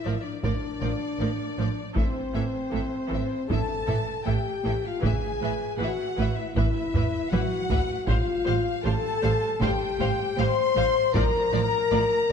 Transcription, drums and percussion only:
0.43 taiko
0.81 taiko mid
1.96 taiko
3.50 taiko
3.88 taiko mid
5.03 taiko
6.56 taiko
6.94 taiko low-mid
7.33 taiko high
7.71 taiko low
8.08 taiko
9.61 taiko
10.00 taiko mid
11.15 taiko

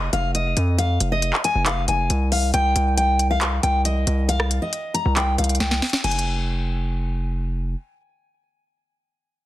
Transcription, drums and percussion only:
0.13 closed hi-hat
0.35 closed hi-hat
0.57 closed hi-hat
0.79 closed hi-hat
1.00 closed hi-hat
1.22 closed hi-hat
1.33 clap
1.44 closed hi-hat
1.66 clap, closed hi-hat
1.88 closed hi-hat
2.10 closed hi-hat
2.32 open hi-hat
2.54 closed hi-hat
2.76 closed hi-hat
2.98 closed hi-hat
3.19 closed hi-hat
3.41 clap, closed hi-hat
3.63 closed hi-hat
3.85 closed hi-hat
4.07 closed hi-hat
4.29 closed hi-hat
4.40 cross-stick
4.51 closed hi-hat
4.73 closed hi-hat
4.95 closed hi-hat
5.17 clap, closed hi-hat
5.38 closed hi-hat
5.44 closed hi-hat
5.49 closed hi-hat
5.55 closed hi-hat
5.60 snare, closed hi-hat
5.71 snare
5.82 snare, closed hi-hat, open hi-hat
5.90 snare, closed hi-hat
5.97 closed hi-hat
6.04 closed hi-hat, crash
6.11 closed hi-hat
6.19 closed hi-hat

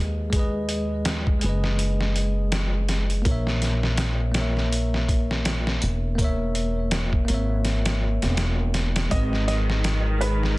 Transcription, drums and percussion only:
0.33 kick, closed hi-hat
0.69 closed hi-hat
1.05 snare, closed hi-hat
1.27 kick
1.41 closed hi-hat
1.64 snare
1.79 closed hi-hat
2.01 snare
2.16 closed hi-hat
2.52 snare, closed hi-hat
2.89 snare, closed hi-hat
3.10 closed hi-hat
3.25 kick, closed hi-hat
3.47 snare
3.62 snare, closed hi-hat
3.83 snare
3.97 snare, closed hi-hat
4.34 snare, closed hi-hat
4.57 snare
4.73 closed hi-hat
4.94 snare
5.09 kick, closed hi-hat
5.31 snare
5.45 snare, closed hi-hat
5.67 snare
5.82 closed hi-hat
6.18 kick, closed hi-hat
6.55 closed hi-hat
6.91 snare, closed hi-hat
7.13 kick
7.28 closed hi-hat
7.65 snare, closed hi-hat
7.86 snare, closed hi-hat
8.22 snare, closed hi-hat
8.37 snare, closed hi-hat
8.74 snare, closed hi-hat
8.96 snare, closed hi-hat
9.11 kick, closed hi-hat
9.33 snare
9.48 snare, closed hi-hat
9.70 snare
9.84 snare, closed hi-hat
10.21 closed hi-hat
10.43 snare

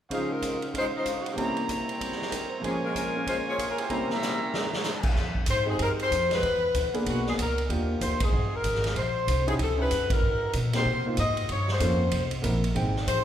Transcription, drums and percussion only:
0.10 kick, ride
0.42 kick, hi-hat pedal, ride
0.62 ride
0.74 kick, ride
1.06 kick, hi-hat pedal, ride
1.26 ride
1.37 kick, ride
1.57 ride
1.69 kick, hi-hat pedal, ride
1.89 ride
2.01 kick, ride
2.12 snare
2.22 snare
2.32 kick, hi-hat pedal, ride
2.63 kick, ride
2.95 kick, hi-hat pedal, ride
3.27 kick, ride
3.58 kick, hi-hat pedal, ride
3.78 ride
3.90 kick, ride
4.10 snare
4.22 snare, hi-hat pedal
4.54 snare
4.73 snare
4.84 snare, hi-hat pedal
5.03 kick, crash
5.15 kick, snare
5.35 kick
5.46 kick, hi-hat pedal, ride
5.79 kick, ride
6.00 ride
6.11 kick, hi-hat pedal, ride
6.31 snare, ride
6.43 kick, ride
6.74 kick, hi-hat pedal, ride
6.94 ride
7.06 kick, ride
7.26 snare
7.38 kick, hi-hat pedal, ride
7.58 ride
7.70 kick, ride
8.01 kick, hi-hat pedal, ride
8.20 kick, ride
8.64 kick, hi-hat pedal, ride
8.75 snare
8.84 snare, ride
8.96 kick, ride
9.27 kick, hi-hat pedal, ride
9.48 ride
9.59 kick, ride
9.91 kick, hi-hat pedal, ride
10.10 kick, ride
10.53 kick, hi-hat pedal, ride
10.73 snare, ride
10.86 kick
11.17 kick, hi-hat pedal, ride
11.37 ride
11.49 kick, ride
11.68 snare
11.80 kick, hi-hat pedal, ride
12.11 kick, ride
12.31 ride
12.44 kick, hi-hat pedal, ride
12.64 ride
12.76 kick, ride
12.96 snare
13.07 kick, hi-hat pedal, ride

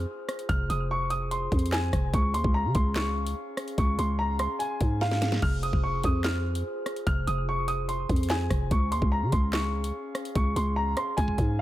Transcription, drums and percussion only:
0.29 cross-stick, closed hi-hat
0.39 closed hi-hat
0.49 kick, closed hi-hat
0.70 closed hi-hat
1.10 closed hi-hat
1.31 closed hi-hat
1.52 kick, closed hi-hat
1.59 closed hi-hat
1.66 closed hi-hat
1.73 snare, clap
1.93 kick, cross-stick, closed hi-hat
2.14 kick, closed hi-hat
2.34 closed hi-hat
2.44 kick
2.75 kick, closed hi-hat
2.96 snare, clap, closed hi-hat
3.27 closed hi-hat
3.57 cross-stick, closed hi-hat
3.68 closed hi-hat
3.78 kick, closed hi-hat
3.99 closed hi-hat
4.39 cross-stick, closed hi-hat
4.60 closed hi-hat
4.81 kick, closed hi-hat
5.01 snare
5.11 snare
5.22 snare, closed hi-hat
5.32 snare
5.42 kick, crash
5.63 closed hi-hat
5.73 kick
6.04 kick, closed hi-hat
6.24 snare, clap, closed hi-hat
6.55 closed hi-hat
6.86 cross-stick, closed hi-hat
6.96 closed hi-hat
7.07 kick, closed hi-hat
7.28 closed hi-hat
7.68 closed hi-hat
7.89 closed hi-hat
8.09 kick, closed hi-hat
8.16 closed hi-hat
8.23 closed hi-hat
8.30 snare, clap
8.50 kick, cross-stick, closed hi-hat
8.71 kick, closed hi-hat
8.92 closed hi-hat
9.02 kick
9.32 kick, closed hi-hat
9.53 snare, clap, closed hi-hat
9.84 closed hi-hat
10.15 cross-stick, closed hi-hat
10.25 closed hi-hat
10.35 kick, closed hi-hat
10.56 closed hi-hat
10.97 cross-stick, closed hi-hat
11.18 kick, closed hi-hat
11.28 kick
11.38 kick, closed hi-hat

